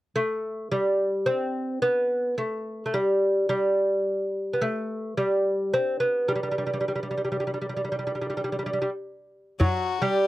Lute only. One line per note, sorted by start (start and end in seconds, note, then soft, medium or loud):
0.16 0.71 A3 medium
0.72 1.29 G3 medium
1.26 1.82 C4 medium
1.82 2.34 B3 medium
2.38 2.83 A3 medium
2.86 2.93 A3 medium
2.94 3.48 G3 medium
3.49 4.57 G3 medium
4.53 4.61 B3 medium
4.61 5.17 A3 medium
5.17 5.74 G3 medium
5.74 6.00 C4 medium
6.00 6.28 B3 medium
6.28 6.34 G3 medium
6.35 6.42 G3 soft
6.43 6.50 G3 medium
6.51 6.57 G3 soft
6.58 6.65 G3 soft
6.67 6.72 G3 soft
6.73 6.79 G3 medium
6.81 6.87 G3 soft
6.88 6.94 G3 soft
6.96 7.02 G3 soft
7.03 7.10 G3 soft
7.11 7.16 G3 soft
7.17 7.23 G3 soft
7.25 7.31 G3 soft
7.32 7.39 G3 soft
7.40 7.46 G3 soft
7.47 7.53 G3 soft
7.54 7.60 G3 soft
7.61 7.68 G3 soft
7.69 7.75 G3 soft
7.77 7.83 G3 soft
7.85 7.91 G3 soft
7.92 7.98 G3 soft
7.99 8.06 G3 soft
8.07 8.14 G3 soft
8.15 8.20 G3 soft
8.22 8.29 G3 soft
8.30 8.36 G3 soft
8.37 8.43 G3 soft
8.44 8.51 G3 soft
8.52 8.58 G3 soft
8.59 8.65 G3 soft
8.66 8.72 G3 soft
8.73 8.80 G3 soft
8.82 8.89 G3 soft
9.60 10.01 F#3 medium
10.02 10.27 G3 medium